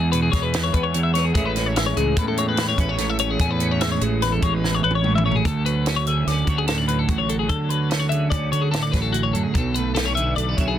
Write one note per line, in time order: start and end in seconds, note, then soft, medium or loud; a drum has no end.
0.00 0.30 E2 medium
0.00 0.93 E2 medium
0.00 0.54 E3 medium
0.00 0.33 G#3 medium
0.00 0.74 B3 medium
0.00 0.12 G#4 medium
0.12 0.54 B2 medium
0.12 0.22 B4 medium
0.12 closed hi-hat medium
0.22 0.33 G#4 medium
0.32 0.70 E2 medium
0.32 1.36 G#3 medium
0.32 0.43 C#5 medium
0.32 kick medium
0.32 snare soft
0.32 closed hi-hat medium
0.42 0.63 B4 medium
0.54 1.36 E3 medium
0.54 snare loud
0.54 closed hi-hat medium
0.64 0.74 C#5 medium
0.74 1.31 E2 medium
0.74 1.14 B3 medium
0.74 0.84 B4 medium
0.74 kick medium
0.74 closed hi-hat medium
0.83 1.03 C#5 medium
0.94 1.33 E2 medium
0.94 closed hi-hat medium
1.03 1.13 E5 medium
1.14 1.33 B3 medium
1.14 1.24 C#5 medium
1.14 snare soft
1.14 closed hi-hat medium
1.25 1.33 G#4 medium
1.34 1.92 A1 loud
1.34 2.17 A2 medium
1.34 1.96 E3 medium
1.34 1.77 G#3 medium
1.34 1.57 C#4 medium
1.34 3.39 E4 medium
1.34 1.45 G#4 medium
1.34 kick loud
1.34 closed hi-hat medium
1.45 1.66 B4 medium
1.56 2.79 C#4 medium
1.56 snare soft
1.56 closed hi-hat medium
1.66 1.76 C#5 medium
1.76 2.37 G#3 medium
1.76 1.86 E5 medium
1.76 snare loud
1.76 closed hi-hat medium
1.86 1.97 C#5 medium
1.97 2.15 C#2 medium
1.97 2.57 E3 medium
1.97 2.17 G#4 medium
1.97 closed hi-hat medium
2.17 2.74 A2 medium
2.17 2.27 B4 medium
2.17 kick loud
2.17 closed hi-hat medium
2.28 2.38 A4 medium
2.37 3.37 G#3 medium
2.37 2.48 C#5 medium
2.37 closed hi-hat medium
2.49 2.68 B4 medium
2.57 3.37 E3 medium
2.57 snare loud
2.57 closed hi-hat medium
2.68 2.80 C#5 medium
2.78 3.36 A1 medium
2.78 3.20 C#4 medium
2.78 2.89 B4 medium
2.78 kick medium
2.78 closed hi-hat medium
2.89 3.10 C#5 medium
2.98 3.38 A2 medium
2.98 snare soft
2.98 closed hi-hat medium
3.10 3.19 E5 medium
3.19 3.61 C#4 medium
3.19 3.30 C#5 medium
3.19 closed hi-hat medium
3.31 3.40 G#4 medium
3.39 3.97 E2 medium
3.39 4.21 A2 medium
3.39 3.51 G#4 medium
3.39 kick loud
3.39 closed hi-hat medium
3.51 3.71 B4 medium
3.60 4.83 C#4 medium
3.60 closed hi-hat medium
3.71 3.81 C#5 medium
3.81 4.42 G#3 medium
3.81 3.91 E5 medium
3.81 snare loud
3.81 closed hi-hat medium
3.92 4.01 C#5 medium
4.01 4.39 A1 medium
4.01 4.63 E3 medium
4.01 4.22 G#4 medium
4.01 closed hi-hat medium
4.22 5.04 E2 medium
4.22 4.32 B4 medium
4.22 snare soft
4.22 closed hi-hat medium
4.32 4.42 A4 medium
4.42 4.80 A1 medium
4.42 5.43 G#3 medium
4.42 4.54 C#5 medium
4.42 kick medium
4.42 closed hi-hat medium
4.54 4.75 B4 medium
4.64 5.43 E3 medium
4.64 snare medium
4.75 4.83 C#5 medium
4.84 5.41 A1 medium
4.84 5.25 C#4 medium
4.84 4.94 B4 medium
4.91 high tom medium
4.95 5.15 C#5 medium
5.04 5.45 A2 medium
5.04 mid tom medium
5.15 5.25 E5 medium
5.15 mid tom medium
5.26 5.43 C#4 medium
5.26 5.35 C#5 medium
5.32 floor tom medium
5.36 5.45 G#4 medium
5.45 6.23 D2 medium
5.45 7.07 D2 medium
5.45 5.65 A4 medium
5.45 kick loud
5.45 closed hi-hat medium
5.66 6.89 F#3 medium
5.66 5.87 B4 medium
5.66 closed hi-hat medium
5.86 6.27 C#4 medium
5.86 5.96 A4 medium
5.86 snare loud
5.86 closed hi-hat medium
5.96 6.06 C#5 medium
6.06 8.09 D3 medium
6.06 6.47 G#4 soft
6.06 6.28 E5 medium
6.06 closed hi-hat medium
6.27 6.46 D2 medium
6.27 7.48 C#4 medium
6.27 6.49 D5 medium
6.27 snare soft
6.27 closed hi-hat medium
6.47 7.05 D2 medium
6.47 8.11 F#4 medium
6.47 6.58 C#5 medium
6.47 kick medium
6.47 closed hi-hat medium
6.58 6.67 G#4 medium
6.68 7.50 A2 medium
6.68 6.78 A4 medium
6.68 snare loud
6.68 closed hi-hat medium
6.78 6.88 D5 medium
6.88 7.28 F#3 medium
6.88 6.98 B4 medium
6.88 closed hi-hat medium
6.99 7.09 A4 medium
7.08 7.46 A1 medium
7.08 7.47 D2 medium
7.08 7.19 F#4 medium
7.08 kick medium
7.08 closed hi-hat medium
7.18 7.29 C#5 medium
7.29 7.70 F#3 medium
7.29 7.39 A4 medium
7.29 closed hi-hat medium
7.39 7.50 G#4 medium
7.48 9.12 D2 medium
7.48 8.28 D3 medium
7.48 7.69 A4 medium
7.48 kick loud
7.48 closed hi-hat medium
7.69 8.93 F#3 medium
7.69 7.90 B4 medium
7.69 closed hi-hat medium
7.90 8.31 C#4 medium
7.90 8.00 A4 medium
7.90 snare loud
7.90 closed hi-hat medium
8.00 8.09 C#5 medium
8.09 10.16 D3 medium
8.09 8.52 G#4 medium
8.09 8.30 E5 medium
8.09 closed hi-hat medium
8.30 8.51 D2 medium
8.30 9.53 C#4 medium
8.30 8.51 D5 medium
8.30 kick loud
8.30 closed hi-hat medium
8.52 8.90 D3 medium
8.52 10.17 F#4 medium
8.52 8.62 C#5 medium
8.52 closed hi-hat medium
8.62 8.71 G#4 medium
8.71 9.55 A2 medium
8.71 8.82 A4 medium
8.71 snare loud
8.71 closed hi-hat medium
8.83 8.93 D5 medium
8.92 9.31 A1 medium
8.92 9.34 F#3 medium
8.92 9.01 B4 medium
8.92 kick medium
8.92 snare soft
8.92 closed hi-hat medium
9.02 9.13 A4 medium
9.12 9.55 D2 medium
9.12 9.24 F#4 medium
9.12 closed hi-hat medium
9.23 9.34 C#5 medium
9.33 9.44 F#2 medium
9.33 9.77 F#3 medium
9.33 9.43 A4 medium
9.33 closed hi-hat medium
9.43 9.54 G#4 medium
9.54 10.33 B1 medium
9.54 10.17 B2 medium
9.54 9.74 A4 medium
9.54 kick loud
9.54 closed hi-hat medium
9.74 9.96 A3 medium
9.74 9.94 B4 medium
9.74 closed hi-hat medium
9.95 10.07 A3 medium
9.95 10.06 A4 medium
9.95 snare loud
9.95 closed hi-hat medium
10.06 10.37 B3 soft
10.06 10.15 C#5 medium
10.15 10.79 D3 medium
10.15 10.58 E4 medium
10.15 10.36 E5 medium
10.15 closed hi-hat medium
10.36 10.56 B1 medium
10.36 10.49 A3 medium
10.36 10.57 D5 medium
10.36 closed hi-hat medium
10.49 10.79 B3 soft
10.57 10.79 B1 medium
10.57 10.79 E4 medium
10.57 10.68 C#5 medium
10.57 kick medium
10.57 closed hi-hat medium
10.68 10.78 G#4 medium